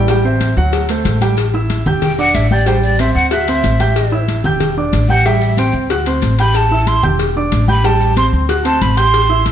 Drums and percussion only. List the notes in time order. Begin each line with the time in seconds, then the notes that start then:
0.08 cowbell, high conga, maracas
0.25 high conga
0.40 cowbell, high conga, maracas
0.56 high conga, maracas
0.73 cowbell, high conga, maracas
0.89 cowbell, high conga, maracas
1.05 cowbell, high conga, maracas
1.21 cowbell, high conga, maracas
1.37 cowbell, high conga, maracas
1.54 high conga
1.70 cowbell, high conga, maracas
1.86 high conga, low conga, maracas
2.02 cowbell, high conga, low conga, maracas
2.18 high conga, maracas
2.34 cowbell, high conga, maracas
2.51 high conga, maracas
2.66 cowbell, maracas
2.83 high conga, maracas
2.99 cowbell, high conga, maracas
3.16 high conga, maracas
3.31 cowbell, high conga, maracas
3.48 cowbell, high conga
3.63 cowbell, high conga, maracas
3.80 cowbell, high conga, maracas
3.96 cowbell, high conga, maracas
4.12 high conga
4.28 cowbell, high conga, maracas
4.44 high conga, low conga, maracas
4.60 cowbell, high conga, low conga, maracas
4.77 high conga
4.93 cowbell, high conga, maracas
5.09 high conga, maracas
5.25 cowbell, maracas
5.41 high conga, maracas
5.57 cowbell, high conga, maracas
5.73 high conga, maracas
5.90 cowbell, high conga, maracas
6.06 cowbell, high conga, maracas
6.22 cowbell, high conga, maracas
6.38 cowbell, maracas
6.54 cowbell, high conga, maracas
6.71 high conga
6.87 cowbell, high conga, maracas
7.03 high conga, low conga, maracas
7.19 cowbell, high conga, maracas
7.36 high conga
7.52 cowbell, high conga, maracas
7.68 high conga, maracas
7.84 cowbell, maracas
8.00 high conga, maracas
8.16 cowbell, high conga, maracas
8.33 high conga, maracas
8.49 cowbell, high conga, maracas
8.65 cowbell, high conga, maracas
8.81 cowbell, high conga, maracas
8.97 cowbell, maracas
9.14 cowbell, high conga, maracas
9.30 high conga
9.46 cowbell, high conga, maracas